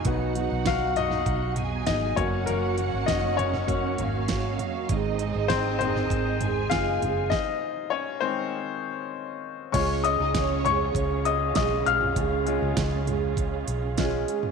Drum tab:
CC |----------------|----------------|----------------|----------------|
HH |x-x-x-x-x-x-x-x-|x-x-x-x-x-x-x-x-|x-x-x-x-x-x-x-x-|----------------|
SD |----o--o----o---|----o--o----o---|----o--o----o---|o---------------|
FT |------oo--o---o-|------oo--o---o-|------oo--o---o-|----------------|
BD |o---o---o---o-o-|----o---o---o---|o---o---o---o---|o---------------|

CC |x---------------|----------------|
HH |x-x-x-x-x-x-x-x-|x-x-x-x-x-x-x-x-|
SD |----o-------o---|----o-------o---|
FT |------o--------o|------o--------o|
BD |o---o---o---o---|o---o---o---o---|